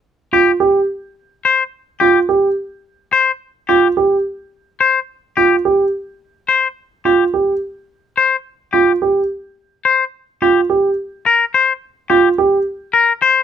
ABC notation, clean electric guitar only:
X:1
M:3/4
L:1/16
Q:1/4=107
K:Gm
V:1 name="Clean electric guitar"
z2 G z6 z c z | z2 G z6 z c z | z2 G z6 z c z | z2 G z6 z c z |
z2 G z6 z c z | z2 G z6 z c z | z2 G z4 z B z c z | z2 G z4 z B z c z |]